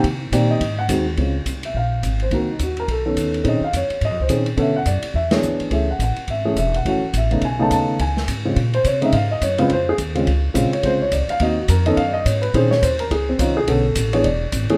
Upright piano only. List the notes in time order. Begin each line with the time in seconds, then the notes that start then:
0.32 D#3 A#3 C4 G4 D5
0.51 D#5
0.79 F#5
0.89 D#3 G#3 C4 F#4
1.18 C#3 G#3 C4 F4
1.65 E5
1.77 F5
2.22 C5
2.32 D#3 A#3 C4 F#4 A#4
2.52 D#4
2.63 F#4
2.80 A#4
2.91 A4
3.06 D#3 B3 C#4 A4
3.43 D#3 C4 C#4 G#4
3.48 D#5
3.64 F5
3.76 C#5
4.05 D#5
4.22 C5
4.30 D#3 C4 C#4 G#4
4.57 D3 B3 C#4 A4
4.62 E5
4.76 F#5
4.87 D5
5.15 E5
5.31 E3 B3 D4 G#4 C#5
5.71 E3 A3 C#4 G#4 E5
5.90 F#5
6.02 F#5
6.30 E5
6.45 E3 A3 C#4 G#4
6.58 E5
6.76 F#5
6.85 E3 A3 C#4 F#4 F#5
7.17 E5
7.31 C#3 A3 B3 D#4
7.45 G#5
7.59 C#3 A3 B3 D#4 A5
7.73 A5
8.01 G#5
8.45 C#3 G#3 C4 F4
8.75 C5
8.86 C#5
9.02 C#3 G#3 C4 D#4 E5
9.14 F5
9.31 D#5
9.43 C#5
9.59 C#3 G#3 C4 F4 B4
9.73 C5
9.89 G#4
10.15 C#3 G#3 C4 F4
10.54 C#3 G#3 C4 F4
10.73 C#5
10.83 C#3 G#3 C4 F4 C5
11.02 C#5
11.12 D5
11.30 F5
11.40 D#3 A#3 C4 F#4 D#5
11.59 F#4
11.70 A#4
11.86 D#3 B3 C#4 A4 D#5
11.97 F5
12.08 D5
12.13 D#5
12.25 C#5
12.42 B4
12.54 D#3 C4 C#4 G#4 C5
12.71 C#5
12.82 C5
13.00 A#4
13.11 G#4
13.29 C4
13.39 D#3 C4 C#4 D#4 F4
13.57 G#4
13.68 D3 B3 C#4 A4
14.13 E3 B3 D4 G#4 C#5
14.24 D5
14.70 E3 A3 C#4 G#4